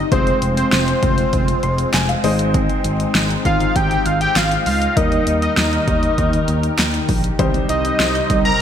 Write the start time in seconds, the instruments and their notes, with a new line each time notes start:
Already playing: analog synth pad C4
0.12 analog synth bass F1, analog synth pad G#3 F4, grand piano G#3 C4 F4 G#4 C5, analog synth lead C5, kick, closed hi-hat
0.27 closed hi-hat
0.42 analog synth bass F1, closed hi-hat
0.57 analog synth lead C5, closed hi-hat
0.72 analog synth bass F1, analog synth lead C5, snare, closed hi-hat
0.88 closed hi-hat
1.03 analog synth bass F1, kick, closed hi-hat
1.18 closed hi-hat
1.33 analog synth bass F1, kick, closed hi-hat
1.48 closed hi-hat
1.63 analog synth bass F1, grand piano C6, closed hi-hat
1.78 closed hi-hat
1.94 analog synth bass F1, grand piano G#5, snare, clap, closed hi-hat
2.09 grand piano F5, closed hi-hat
2.24 analog synth bass G#1, grand piano G#3 C4 D#4 G#4 C5 D#5, analog synth pad D#4, open hi-hat
2.39 closed hi-hat
2.54 kick, closed hi-hat
2.69 closed hi-hat
2.84 analog synth bass G#1, closed hi-hat
3.00 closed hi-hat
3.15 analog synth bass G#1, snare, closed hi-hat
3.30 closed hi-hat
3.45 analog synth bass G#1, analog synth lead F5, kick, closed hi-hat
3.60 closed hi-hat
3.76 analog synth bass G#1, analog synth lead G5, kick, closed hi-hat
3.91 closed hi-hat
4.06 analog synth bass G#1, analog synth lead F5, closed hi-hat
4.21 analog synth lead G5, closed hi-hat
4.36 analog synth bass G#1, analog synth lead F5, snare, clap, closed hi-hat
4.52 closed hi-hat
4.66 analog synth bass C#2, analog synth lead F5, open hi-hat
4.82 closed hi-hat
4.96 analog synth bass D#2, analog synth pad D#3 G4 A#4, grand piano G3 A#3 D#4 G4 A#4, analog synth lead D#5, kick, closed hi-hat
5.12 closed hi-hat
5.27 analog synth bass D#2, closed hi-hat
5.42 analog synth lead D#5, closed hi-hat
5.57 analog synth bass D#2, analog synth lead D#5, snare, closed hi-hat
5.73 closed hi-hat
5.88 analog synth bass D#2, kick, closed hi-hat
6.03 closed hi-hat
6.18 analog synth bass D#2, kick, closed hi-hat
6.33 closed hi-hat
6.48 analog synth bass D#2, closed hi-hat
6.63 closed hi-hat
6.79 analog synth bass D#2, snare, clap, closed hi-hat
6.94 closed hi-hat
7.09 analog synth bass A#1, kick, open hi-hat
7.24 closed hi-hat
7.39 analog synth bass C2, analog synth pad C3 C4 D#4, synth arpeggio sound D#3, grand piano G3 C4 D#4 G4 C5, kick, closed hi-hat
7.54 synth arpeggio sound C4, closed hi-hat
7.69 analog synth bass C2, synth arpeggio sound G4, analog synth lead D#5, closed hi-hat
7.84 synth arpeggio sound D#5, closed hi-hat
8.00 analog synth bass C2, synth arpeggio sound C6, snare, closed hi-hat
8.15 synth arpeggio sound G6, closed hi-hat
8.30 analog synth bass C2, kick, closed hi-hat
8.45 analog synth lead A#5, closed hi-hat